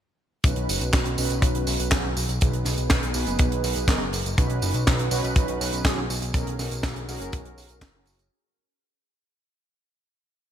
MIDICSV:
0, 0, Header, 1, 4, 480
1, 0, Start_track
1, 0, Key_signature, 5, "major"
1, 0, Tempo, 491803
1, 433, Time_signature, 4, 2, 24, 8
1, 10259, End_track
2, 0, Start_track
2, 0, Title_t, "Analog polysynth"
2, 0, Program_c, 0, 90
2, 433, Note_on_c, 0, 63, 77
2, 433, Note_on_c, 0, 66, 76
2, 433, Note_on_c, 0, 71, 90
2, 434, Note_on_c, 0, 61, 85
2, 1124, Note_off_c, 0, 63, 0
2, 1124, Note_off_c, 0, 66, 0
2, 1124, Note_off_c, 0, 71, 0
2, 1125, Note_off_c, 0, 61, 0
2, 1150, Note_on_c, 0, 61, 95
2, 1150, Note_on_c, 0, 63, 90
2, 1150, Note_on_c, 0, 66, 90
2, 1150, Note_on_c, 0, 71, 107
2, 1843, Note_off_c, 0, 61, 0
2, 1843, Note_off_c, 0, 63, 0
2, 1843, Note_off_c, 0, 66, 0
2, 1843, Note_off_c, 0, 71, 0
2, 1871, Note_on_c, 0, 63, 91
2, 1872, Note_on_c, 0, 61, 99
2, 1872, Note_on_c, 0, 66, 90
2, 1872, Note_on_c, 0, 68, 108
2, 2001, Note_off_c, 0, 63, 0
2, 2002, Note_off_c, 0, 61, 0
2, 2002, Note_off_c, 0, 66, 0
2, 2002, Note_off_c, 0, 68, 0
2, 2351, Note_on_c, 0, 68, 76
2, 2352, Note_on_c, 0, 59, 82
2, 2352, Note_on_c, 0, 63, 76
2, 2352, Note_on_c, 0, 71, 88
2, 3043, Note_off_c, 0, 59, 0
2, 3043, Note_off_c, 0, 68, 0
2, 3044, Note_off_c, 0, 63, 0
2, 3044, Note_off_c, 0, 71, 0
2, 3070, Note_on_c, 0, 63, 89
2, 3070, Note_on_c, 0, 68, 89
2, 3071, Note_on_c, 0, 59, 96
2, 3071, Note_on_c, 0, 71, 106
2, 3763, Note_off_c, 0, 59, 0
2, 3763, Note_off_c, 0, 63, 0
2, 3763, Note_off_c, 0, 68, 0
2, 3763, Note_off_c, 0, 71, 0
2, 3792, Note_on_c, 0, 59, 100
2, 3792, Note_on_c, 0, 63, 93
2, 3792, Note_on_c, 0, 68, 89
2, 3792, Note_on_c, 0, 70, 111
2, 3922, Note_off_c, 0, 59, 0
2, 3922, Note_off_c, 0, 63, 0
2, 3922, Note_off_c, 0, 68, 0
2, 3922, Note_off_c, 0, 70, 0
2, 4271, Note_on_c, 0, 63, 75
2, 4272, Note_on_c, 0, 61, 83
2, 4272, Note_on_c, 0, 66, 77
2, 4272, Note_on_c, 0, 71, 92
2, 4963, Note_off_c, 0, 63, 0
2, 4964, Note_off_c, 0, 61, 0
2, 4964, Note_off_c, 0, 66, 0
2, 4964, Note_off_c, 0, 71, 0
2, 4992, Note_on_c, 0, 61, 98
2, 4992, Note_on_c, 0, 63, 92
2, 4992, Note_on_c, 0, 66, 86
2, 4993, Note_on_c, 0, 71, 106
2, 5684, Note_off_c, 0, 61, 0
2, 5684, Note_off_c, 0, 63, 0
2, 5684, Note_off_c, 0, 66, 0
2, 5684, Note_off_c, 0, 71, 0
2, 5711, Note_on_c, 0, 61, 102
2, 5711, Note_on_c, 0, 63, 91
2, 5711, Note_on_c, 0, 68, 114
2, 5712, Note_on_c, 0, 66, 93
2, 5841, Note_off_c, 0, 61, 0
2, 5841, Note_off_c, 0, 68, 0
2, 5842, Note_off_c, 0, 63, 0
2, 5842, Note_off_c, 0, 66, 0
2, 6190, Note_on_c, 0, 68, 76
2, 6191, Note_on_c, 0, 61, 82
2, 6191, Note_on_c, 0, 66, 73
2, 6191, Note_on_c, 0, 70, 90
2, 6883, Note_off_c, 0, 61, 0
2, 6883, Note_off_c, 0, 66, 0
2, 6883, Note_off_c, 0, 68, 0
2, 6883, Note_off_c, 0, 70, 0
2, 6913, Note_on_c, 0, 61, 98
2, 6913, Note_on_c, 0, 66, 92
2, 6913, Note_on_c, 0, 68, 90
2, 6913, Note_on_c, 0, 70, 107
2, 7604, Note_off_c, 0, 61, 0
2, 7604, Note_off_c, 0, 66, 0
2, 7604, Note_off_c, 0, 68, 0
2, 7604, Note_off_c, 0, 70, 0
2, 7752, Note_on_c, 0, 61, 78
2, 7752, Note_on_c, 0, 70, 85
2, 7753, Note_on_c, 0, 66, 68
2, 7753, Note_on_c, 0, 68, 72
2, 8084, Note_off_c, 0, 61, 0
2, 8084, Note_off_c, 0, 66, 0
2, 8084, Note_off_c, 0, 68, 0
2, 8084, Note_off_c, 0, 70, 0
2, 10259, End_track
3, 0, Start_track
3, 0, Title_t, "Analog synth bass"
3, 0, Program_c, 1, 38
3, 428, Note_on_c, 1, 35, 100
3, 536, Note_off_c, 1, 35, 0
3, 553, Note_on_c, 1, 35, 78
3, 659, Note_off_c, 1, 35, 0
3, 673, Note_on_c, 1, 30, 98
3, 779, Note_off_c, 1, 30, 0
3, 794, Note_on_c, 1, 35, 80
3, 899, Note_off_c, 1, 35, 0
3, 910, Note_on_c, 1, 35, 104
3, 1017, Note_off_c, 1, 35, 0
3, 1032, Note_on_c, 1, 35, 79
3, 1138, Note_off_c, 1, 35, 0
3, 1152, Note_on_c, 1, 35, 97
3, 1258, Note_off_c, 1, 35, 0
3, 1272, Note_on_c, 1, 35, 80
3, 1379, Note_off_c, 1, 35, 0
3, 1388, Note_on_c, 1, 35, 99
3, 1496, Note_off_c, 1, 35, 0
3, 1511, Note_on_c, 1, 35, 76
3, 1618, Note_off_c, 1, 35, 0
3, 1631, Note_on_c, 1, 35, 97
3, 1738, Note_off_c, 1, 35, 0
3, 1753, Note_on_c, 1, 35, 81
3, 1859, Note_off_c, 1, 35, 0
3, 1871, Note_on_c, 1, 35, 104
3, 1978, Note_off_c, 1, 35, 0
3, 1993, Note_on_c, 1, 35, 76
3, 2098, Note_off_c, 1, 35, 0
3, 2112, Note_on_c, 1, 35, 96
3, 2218, Note_off_c, 1, 35, 0
3, 2234, Note_on_c, 1, 35, 85
3, 2339, Note_off_c, 1, 35, 0
3, 2362, Note_on_c, 1, 35, 103
3, 2463, Note_off_c, 1, 35, 0
3, 2471, Note_on_c, 1, 35, 77
3, 2578, Note_off_c, 1, 35, 0
3, 2592, Note_on_c, 1, 35, 97
3, 2698, Note_off_c, 1, 35, 0
3, 2713, Note_on_c, 1, 35, 80
3, 2818, Note_off_c, 1, 35, 0
3, 2837, Note_on_c, 1, 35, 103
3, 2940, Note_off_c, 1, 35, 0
3, 2952, Note_on_c, 1, 35, 80
3, 3058, Note_off_c, 1, 35, 0
3, 3072, Note_on_c, 1, 35, 93
3, 3178, Note_off_c, 1, 35, 0
3, 3191, Note_on_c, 1, 30, 83
3, 3298, Note_off_c, 1, 30, 0
3, 3313, Note_on_c, 1, 35, 103
3, 3419, Note_off_c, 1, 35, 0
3, 3431, Note_on_c, 1, 35, 79
3, 3538, Note_off_c, 1, 35, 0
3, 3551, Note_on_c, 1, 35, 94
3, 3658, Note_off_c, 1, 35, 0
3, 3672, Note_on_c, 1, 35, 82
3, 3778, Note_off_c, 1, 35, 0
3, 3784, Note_on_c, 1, 30, 106
3, 3894, Note_off_c, 1, 30, 0
3, 3913, Note_on_c, 1, 30, 77
3, 4019, Note_off_c, 1, 30, 0
3, 4033, Note_on_c, 1, 30, 97
3, 4139, Note_off_c, 1, 30, 0
3, 4152, Note_on_c, 1, 30, 86
3, 4258, Note_off_c, 1, 30, 0
3, 4273, Note_on_c, 1, 35, 104
3, 4379, Note_off_c, 1, 35, 0
3, 4391, Note_on_c, 1, 35, 77
3, 4498, Note_off_c, 1, 35, 0
3, 4510, Note_on_c, 1, 30, 93
3, 4617, Note_off_c, 1, 30, 0
3, 4629, Note_on_c, 1, 35, 80
3, 4737, Note_off_c, 1, 35, 0
3, 4757, Note_on_c, 1, 35, 104
3, 4861, Note_off_c, 1, 35, 0
3, 4870, Note_on_c, 1, 35, 79
3, 4977, Note_off_c, 1, 35, 0
3, 4991, Note_on_c, 1, 35, 95
3, 5098, Note_off_c, 1, 35, 0
3, 5113, Note_on_c, 1, 35, 86
3, 5219, Note_off_c, 1, 35, 0
3, 5231, Note_on_c, 1, 35, 98
3, 5338, Note_off_c, 1, 35, 0
3, 5354, Note_on_c, 1, 35, 75
3, 5459, Note_off_c, 1, 35, 0
3, 5472, Note_on_c, 1, 35, 96
3, 5578, Note_off_c, 1, 35, 0
3, 5592, Note_on_c, 1, 35, 79
3, 5698, Note_off_c, 1, 35, 0
3, 5707, Note_on_c, 1, 35, 104
3, 5815, Note_off_c, 1, 35, 0
3, 5833, Note_on_c, 1, 35, 76
3, 5939, Note_off_c, 1, 35, 0
3, 5953, Note_on_c, 1, 35, 98
3, 6059, Note_off_c, 1, 35, 0
3, 6071, Note_on_c, 1, 35, 86
3, 6178, Note_off_c, 1, 35, 0
3, 6188, Note_on_c, 1, 35, 102
3, 6296, Note_off_c, 1, 35, 0
3, 6312, Note_on_c, 1, 35, 77
3, 6418, Note_off_c, 1, 35, 0
3, 6433, Note_on_c, 1, 35, 96
3, 6539, Note_off_c, 1, 35, 0
3, 6551, Note_on_c, 1, 35, 82
3, 6658, Note_off_c, 1, 35, 0
3, 6670, Note_on_c, 1, 35, 103
3, 6777, Note_off_c, 1, 35, 0
3, 6793, Note_on_c, 1, 35, 77
3, 6899, Note_off_c, 1, 35, 0
3, 6912, Note_on_c, 1, 35, 95
3, 7018, Note_off_c, 1, 35, 0
3, 7031, Note_on_c, 1, 30, 81
3, 7138, Note_off_c, 1, 30, 0
3, 7155, Note_on_c, 1, 35, 99
3, 7260, Note_off_c, 1, 35, 0
3, 7271, Note_on_c, 1, 35, 77
3, 7377, Note_off_c, 1, 35, 0
3, 7391, Note_on_c, 1, 35, 95
3, 7498, Note_off_c, 1, 35, 0
3, 7511, Note_on_c, 1, 35, 81
3, 7618, Note_off_c, 1, 35, 0
3, 7626, Note_on_c, 1, 30, 101
3, 7735, Note_off_c, 1, 30, 0
3, 7752, Note_on_c, 1, 30, 79
3, 7858, Note_off_c, 1, 30, 0
3, 7872, Note_on_c, 1, 30, 95
3, 7978, Note_off_c, 1, 30, 0
3, 7992, Note_on_c, 1, 30, 85
3, 8098, Note_off_c, 1, 30, 0
3, 10259, End_track
4, 0, Start_track
4, 0, Title_t, "Drums"
4, 427, Note_on_c, 9, 54, 31
4, 429, Note_on_c, 9, 36, 125
4, 440, Note_on_c, 9, 42, 98
4, 525, Note_off_c, 9, 54, 0
4, 527, Note_off_c, 9, 36, 0
4, 538, Note_off_c, 9, 42, 0
4, 547, Note_on_c, 9, 42, 59
4, 645, Note_off_c, 9, 42, 0
4, 675, Note_on_c, 9, 46, 109
4, 675, Note_on_c, 9, 54, 61
4, 772, Note_off_c, 9, 46, 0
4, 773, Note_off_c, 9, 54, 0
4, 792, Note_on_c, 9, 42, 62
4, 794, Note_on_c, 9, 54, 37
4, 890, Note_off_c, 9, 42, 0
4, 891, Note_off_c, 9, 54, 0
4, 910, Note_on_c, 9, 36, 126
4, 910, Note_on_c, 9, 39, 103
4, 914, Note_on_c, 9, 42, 98
4, 914, Note_on_c, 9, 54, 26
4, 916, Note_on_c, 9, 38, 109
4, 1008, Note_off_c, 9, 36, 0
4, 1008, Note_off_c, 9, 39, 0
4, 1011, Note_off_c, 9, 42, 0
4, 1012, Note_off_c, 9, 54, 0
4, 1013, Note_off_c, 9, 38, 0
4, 1030, Note_on_c, 9, 42, 62
4, 1128, Note_off_c, 9, 42, 0
4, 1150, Note_on_c, 9, 46, 109
4, 1150, Note_on_c, 9, 54, 61
4, 1248, Note_off_c, 9, 46, 0
4, 1248, Note_off_c, 9, 54, 0
4, 1268, Note_on_c, 9, 42, 55
4, 1271, Note_on_c, 9, 54, 38
4, 1366, Note_off_c, 9, 42, 0
4, 1369, Note_off_c, 9, 54, 0
4, 1388, Note_on_c, 9, 36, 109
4, 1393, Note_on_c, 9, 54, 28
4, 1395, Note_on_c, 9, 42, 105
4, 1485, Note_off_c, 9, 36, 0
4, 1491, Note_off_c, 9, 54, 0
4, 1492, Note_off_c, 9, 42, 0
4, 1511, Note_on_c, 9, 42, 59
4, 1609, Note_off_c, 9, 42, 0
4, 1628, Note_on_c, 9, 54, 61
4, 1630, Note_on_c, 9, 46, 109
4, 1726, Note_off_c, 9, 54, 0
4, 1727, Note_off_c, 9, 46, 0
4, 1752, Note_on_c, 9, 54, 38
4, 1756, Note_on_c, 9, 42, 57
4, 1850, Note_off_c, 9, 54, 0
4, 1853, Note_off_c, 9, 42, 0
4, 1863, Note_on_c, 9, 42, 105
4, 1867, Note_on_c, 9, 39, 96
4, 1870, Note_on_c, 9, 36, 117
4, 1871, Note_on_c, 9, 38, 108
4, 1871, Note_on_c, 9, 54, 28
4, 1960, Note_off_c, 9, 42, 0
4, 1964, Note_off_c, 9, 39, 0
4, 1968, Note_off_c, 9, 36, 0
4, 1968, Note_off_c, 9, 38, 0
4, 1969, Note_off_c, 9, 54, 0
4, 2115, Note_on_c, 9, 54, 61
4, 2119, Note_on_c, 9, 46, 91
4, 2212, Note_off_c, 9, 54, 0
4, 2216, Note_off_c, 9, 46, 0
4, 2234, Note_on_c, 9, 54, 37
4, 2236, Note_on_c, 9, 42, 62
4, 2332, Note_off_c, 9, 54, 0
4, 2334, Note_off_c, 9, 42, 0
4, 2351, Note_on_c, 9, 54, 28
4, 2353, Note_on_c, 9, 42, 109
4, 2362, Note_on_c, 9, 36, 125
4, 2448, Note_off_c, 9, 54, 0
4, 2451, Note_off_c, 9, 42, 0
4, 2459, Note_off_c, 9, 36, 0
4, 2474, Note_on_c, 9, 42, 54
4, 2571, Note_off_c, 9, 42, 0
4, 2584, Note_on_c, 9, 38, 35
4, 2592, Note_on_c, 9, 46, 98
4, 2595, Note_on_c, 9, 54, 66
4, 2681, Note_off_c, 9, 38, 0
4, 2689, Note_off_c, 9, 46, 0
4, 2693, Note_off_c, 9, 54, 0
4, 2709, Note_on_c, 9, 54, 35
4, 2710, Note_on_c, 9, 42, 52
4, 2807, Note_off_c, 9, 54, 0
4, 2808, Note_off_c, 9, 42, 0
4, 2826, Note_on_c, 9, 54, 28
4, 2828, Note_on_c, 9, 38, 124
4, 2835, Note_on_c, 9, 39, 98
4, 2835, Note_on_c, 9, 42, 94
4, 2837, Note_on_c, 9, 36, 127
4, 2923, Note_off_c, 9, 54, 0
4, 2926, Note_off_c, 9, 38, 0
4, 2932, Note_off_c, 9, 39, 0
4, 2932, Note_off_c, 9, 42, 0
4, 2934, Note_off_c, 9, 36, 0
4, 2956, Note_on_c, 9, 42, 61
4, 3054, Note_off_c, 9, 42, 0
4, 3065, Note_on_c, 9, 54, 72
4, 3073, Note_on_c, 9, 46, 87
4, 3162, Note_off_c, 9, 54, 0
4, 3171, Note_off_c, 9, 46, 0
4, 3188, Note_on_c, 9, 54, 35
4, 3195, Note_on_c, 9, 42, 55
4, 3286, Note_off_c, 9, 54, 0
4, 3292, Note_off_c, 9, 42, 0
4, 3305, Note_on_c, 9, 42, 104
4, 3305, Note_on_c, 9, 54, 26
4, 3313, Note_on_c, 9, 36, 118
4, 3403, Note_off_c, 9, 42, 0
4, 3403, Note_off_c, 9, 54, 0
4, 3410, Note_off_c, 9, 36, 0
4, 3435, Note_on_c, 9, 42, 55
4, 3533, Note_off_c, 9, 42, 0
4, 3551, Note_on_c, 9, 54, 65
4, 3552, Note_on_c, 9, 46, 110
4, 3649, Note_off_c, 9, 54, 0
4, 3650, Note_off_c, 9, 46, 0
4, 3667, Note_on_c, 9, 54, 34
4, 3675, Note_on_c, 9, 42, 50
4, 3765, Note_off_c, 9, 54, 0
4, 3773, Note_off_c, 9, 42, 0
4, 3785, Note_on_c, 9, 36, 127
4, 3788, Note_on_c, 9, 42, 99
4, 3792, Note_on_c, 9, 54, 26
4, 3794, Note_on_c, 9, 38, 117
4, 3799, Note_on_c, 9, 39, 97
4, 3882, Note_off_c, 9, 36, 0
4, 3886, Note_off_c, 9, 42, 0
4, 3890, Note_off_c, 9, 54, 0
4, 3892, Note_off_c, 9, 38, 0
4, 3897, Note_off_c, 9, 39, 0
4, 4030, Note_on_c, 9, 46, 101
4, 4039, Note_on_c, 9, 54, 67
4, 4127, Note_off_c, 9, 46, 0
4, 4136, Note_off_c, 9, 54, 0
4, 4158, Note_on_c, 9, 42, 58
4, 4158, Note_on_c, 9, 54, 38
4, 4255, Note_off_c, 9, 42, 0
4, 4256, Note_off_c, 9, 54, 0
4, 4274, Note_on_c, 9, 36, 127
4, 4276, Note_on_c, 9, 54, 28
4, 4278, Note_on_c, 9, 42, 98
4, 4372, Note_off_c, 9, 36, 0
4, 4374, Note_off_c, 9, 54, 0
4, 4376, Note_off_c, 9, 42, 0
4, 4389, Note_on_c, 9, 42, 54
4, 4486, Note_off_c, 9, 42, 0
4, 4508, Note_on_c, 9, 46, 105
4, 4511, Note_on_c, 9, 54, 70
4, 4605, Note_off_c, 9, 46, 0
4, 4609, Note_off_c, 9, 54, 0
4, 4626, Note_on_c, 9, 42, 59
4, 4631, Note_on_c, 9, 54, 36
4, 4724, Note_off_c, 9, 42, 0
4, 4729, Note_off_c, 9, 54, 0
4, 4750, Note_on_c, 9, 54, 27
4, 4753, Note_on_c, 9, 38, 114
4, 4755, Note_on_c, 9, 42, 102
4, 4757, Note_on_c, 9, 36, 127
4, 4759, Note_on_c, 9, 39, 106
4, 4848, Note_off_c, 9, 54, 0
4, 4850, Note_off_c, 9, 38, 0
4, 4853, Note_off_c, 9, 42, 0
4, 4855, Note_off_c, 9, 36, 0
4, 4857, Note_off_c, 9, 39, 0
4, 4872, Note_on_c, 9, 42, 54
4, 4970, Note_off_c, 9, 42, 0
4, 4988, Note_on_c, 9, 46, 93
4, 4990, Note_on_c, 9, 54, 74
4, 5086, Note_off_c, 9, 46, 0
4, 5087, Note_off_c, 9, 54, 0
4, 5117, Note_on_c, 9, 54, 36
4, 5121, Note_on_c, 9, 42, 60
4, 5215, Note_off_c, 9, 54, 0
4, 5219, Note_off_c, 9, 42, 0
4, 5230, Note_on_c, 9, 42, 89
4, 5231, Note_on_c, 9, 36, 127
4, 5240, Note_on_c, 9, 54, 30
4, 5327, Note_off_c, 9, 42, 0
4, 5329, Note_off_c, 9, 36, 0
4, 5338, Note_off_c, 9, 54, 0
4, 5348, Note_on_c, 9, 42, 52
4, 5446, Note_off_c, 9, 42, 0
4, 5477, Note_on_c, 9, 46, 94
4, 5477, Note_on_c, 9, 54, 73
4, 5574, Note_off_c, 9, 46, 0
4, 5575, Note_off_c, 9, 54, 0
4, 5588, Note_on_c, 9, 42, 53
4, 5598, Note_on_c, 9, 54, 39
4, 5685, Note_off_c, 9, 42, 0
4, 5696, Note_off_c, 9, 54, 0
4, 5707, Note_on_c, 9, 36, 119
4, 5713, Note_on_c, 9, 39, 99
4, 5715, Note_on_c, 9, 38, 127
4, 5716, Note_on_c, 9, 54, 29
4, 5718, Note_on_c, 9, 42, 101
4, 5804, Note_off_c, 9, 36, 0
4, 5810, Note_off_c, 9, 39, 0
4, 5812, Note_off_c, 9, 38, 0
4, 5814, Note_off_c, 9, 54, 0
4, 5815, Note_off_c, 9, 42, 0
4, 5955, Note_on_c, 9, 46, 104
4, 5955, Note_on_c, 9, 54, 65
4, 6052, Note_off_c, 9, 54, 0
4, 6053, Note_off_c, 9, 46, 0
4, 6072, Note_on_c, 9, 54, 36
4, 6076, Note_on_c, 9, 42, 57
4, 6169, Note_off_c, 9, 54, 0
4, 6174, Note_off_c, 9, 42, 0
4, 6189, Note_on_c, 9, 36, 127
4, 6191, Note_on_c, 9, 42, 88
4, 6194, Note_on_c, 9, 54, 34
4, 6287, Note_off_c, 9, 36, 0
4, 6289, Note_off_c, 9, 42, 0
4, 6292, Note_off_c, 9, 54, 0
4, 6315, Note_on_c, 9, 42, 59
4, 6412, Note_off_c, 9, 42, 0
4, 6433, Note_on_c, 9, 38, 39
4, 6434, Note_on_c, 9, 54, 74
4, 6437, Note_on_c, 9, 46, 110
4, 6531, Note_off_c, 9, 38, 0
4, 6531, Note_off_c, 9, 54, 0
4, 6535, Note_off_c, 9, 46, 0
4, 6552, Note_on_c, 9, 42, 56
4, 6556, Note_on_c, 9, 54, 43
4, 6650, Note_off_c, 9, 42, 0
4, 6653, Note_off_c, 9, 54, 0
4, 6668, Note_on_c, 9, 38, 125
4, 6671, Note_on_c, 9, 36, 127
4, 6676, Note_on_c, 9, 39, 98
4, 6682, Note_on_c, 9, 42, 98
4, 6766, Note_off_c, 9, 38, 0
4, 6768, Note_off_c, 9, 36, 0
4, 6774, Note_off_c, 9, 39, 0
4, 6779, Note_off_c, 9, 42, 0
4, 6795, Note_on_c, 9, 42, 53
4, 6892, Note_off_c, 9, 42, 0
4, 6916, Note_on_c, 9, 54, 68
4, 6918, Note_on_c, 9, 46, 102
4, 7014, Note_off_c, 9, 54, 0
4, 7016, Note_off_c, 9, 46, 0
4, 7040, Note_on_c, 9, 54, 39
4, 7042, Note_on_c, 9, 42, 53
4, 7138, Note_off_c, 9, 54, 0
4, 7139, Note_off_c, 9, 42, 0
4, 7149, Note_on_c, 9, 54, 28
4, 7154, Note_on_c, 9, 42, 101
4, 7155, Note_on_c, 9, 36, 124
4, 7246, Note_off_c, 9, 54, 0
4, 7252, Note_off_c, 9, 42, 0
4, 7253, Note_off_c, 9, 36, 0
4, 7275, Note_on_c, 9, 42, 52
4, 7373, Note_off_c, 9, 42, 0
4, 7395, Note_on_c, 9, 54, 63
4, 7400, Note_on_c, 9, 46, 114
4, 7493, Note_off_c, 9, 54, 0
4, 7498, Note_off_c, 9, 46, 0
4, 7502, Note_on_c, 9, 54, 39
4, 7508, Note_on_c, 9, 42, 53
4, 7600, Note_off_c, 9, 54, 0
4, 7606, Note_off_c, 9, 42, 0
4, 7626, Note_on_c, 9, 36, 120
4, 7632, Note_on_c, 9, 39, 104
4, 7633, Note_on_c, 9, 42, 95
4, 7635, Note_on_c, 9, 54, 31
4, 7636, Note_on_c, 9, 38, 127
4, 7724, Note_off_c, 9, 36, 0
4, 7729, Note_off_c, 9, 39, 0
4, 7730, Note_off_c, 9, 42, 0
4, 7733, Note_off_c, 9, 54, 0
4, 7734, Note_off_c, 9, 38, 0
4, 7862, Note_on_c, 9, 46, 97
4, 7877, Note_on_c, 9, 54, 65
4, 7960, Note_off_c, 9, 46, 0
4, 7975, Note_off_c, 9, 54, 0
4, 7993, Note_on_c, 9, 54, 40
4, 7995, Note_on_c, 9, 42, 54
4, 8091, Note_off_c, 9, 54, 0
4, 8093, Note_off_c, 9, 42, 0
4, 10259, End_track
0, 0, End_of_file